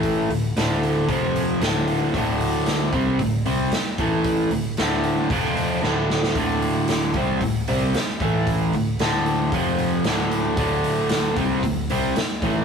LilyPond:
<<
  \new Staff \with { instrumentName = "Overdriven electric guitar" } { \clef bass \time 4/4 \key d \minor \tempo 4 = 114 <a, e a>8 <d, a,>8 <d, a, d>4 <f, c f>4 <d, a, d>4 | <d, a, d>4. <c g c'>8 <d, a,>8 <c g c'>8 r8 <a, e a>8~ | <a, e a>8 <d, a,>8 <d, a, d>4 <f, c f>4 <d, a, d>4 | <d, a, d>4. <c g c'>8 <d, a,>8 <c g c'>8 r8 <a, e a>8~ |
<a, e a>8 <d, a,>8 <d, a, d>4 <f, c f>4 <d, a, d>4 | <d, a, d>4. <c g c'>8 <d, a,>8 <c g c'>8 r8 <a, e a>8 | }
  \new Staff \with { instrumentName = "Picked electric bass" } { \clef bass \time 4/4 \key d \minor a,,8 d,,8 d,,4 f,,4 d,,4 | d,,4. c,8 d,,8 c,8 r8 a,,8~ | a,,8 d,,8 d,,4 f,,4 d,,4 | d,,4. c,8 d,,8 c,8 r8 a,,8~ |
a,,8 d,,8 d,,4 f,,4 d,,4 | d,,4. c,8 d,,8 c,8 r8 a,,8 | }
  \new DrumStaff \with { instrumentName = "Drums" } \drummode { \time 4/4 <hho bd>8 hho8 <hho sn>8 hho8 <hho bd>8 hho8 <hho sn>8 hho8 | <hho bd>8 hho8 <hho sn>8 <hho bd>8 <hho bd>8 hho8 <hho sn>8 <hho bd>8 | <hho bd>8 hho8 <hho sn>8 hho8 <hho bd>8 hho8 sn8 sn16 sn16 | <hho bd>8 hho8 <hho sn>8 <hho bd>8 <hho bd>8 hho8 <hho sn>8 <hho bd>8 |
<hho bd>8 hho8 <hho sn>8 hho8 <hho bd>8 hho8 <hho sn>8 hho8 | <hho bd>8 hho8 <hho sn>8 <hho bd>8 <hho bd>8 hho8 <hho sn>8 <hho bd>8 | }
>>